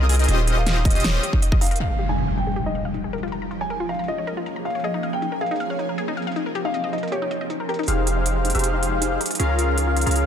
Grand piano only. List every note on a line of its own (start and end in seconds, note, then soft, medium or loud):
0.57 0.80 F5 loud
0.85 1.01 D#5 medium
1.05 1.27 C#5 medium
1.61 1.77 F5 medium
1.80 2.03 F5 medium
2.09 2.32 G#5 medium
2.37 2.60 G5 medium
2.66 2.81 D#5 medium
3.61 3.83 G#5 medium
3.89 4.04 F5 medium
4.08 4.31 D#5 medium
4.65 4.80 F5 medium
4.84 5.07 D#5 medium
5.13 5.35 G5 medium
5.41 5.64 F5 medium
5.70 5.85 C#5 medium
6.65 6.87 F5 medium
6.93 7.08 D#5 medium
7.12 7.35 C#5 medium
7.69 7.84 A#4 medium